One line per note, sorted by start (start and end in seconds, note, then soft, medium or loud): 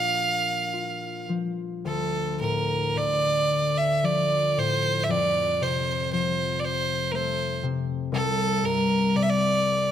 0.00 1.90 A#2 medium
0.00 1.28 F3 soft
0.00 0.56 C4 soft
0.00 2.45 D4 soft
0.00 1.29 F5 medium
0.73 3.26 F4 soft
1.29 1.90 F3 soft
1.85 5.14 D2 medium
1.85 2.37 A4 medium
2.41 3.00 A2 soft
2.41 2.99 A#4 medium
2.95 4.62 D3 soft
2.95 3.80 D5 medium
3.78 4.06 E5 medium
4.03 5.14 F3 soft
4.03 4.60 D5 medium
4.57 5.14 A2 soft
4.57 5.05 C5 medium
5.04 5.12 E5 medium
5.09 8.18 F2 medium
5.09 5.64 D5 medium
5.61 7.62 C3 soft
5.61 6.12 C5 medium
6.13 7.68 F3 soft
6.13 6.62 C5 medium
6.60 6.66 D5 medium
6.65 7.13 C5 medium
7.12 9.92 A3 medium
7.12 7.17 A#4 soft
7.12 7.64 C5 medium
7.63 8.18 C3 medium
8.12 9.92 C2 medium
8.12 8.67 A4 medium
8.63 9.19 G2 soft
8.63 9.18 A#4 medium
9.15 9.92 C3 medium
9.15 9.24 D5 medium
9.23 9.30 E5 medium
9.29 9.92 D5 loud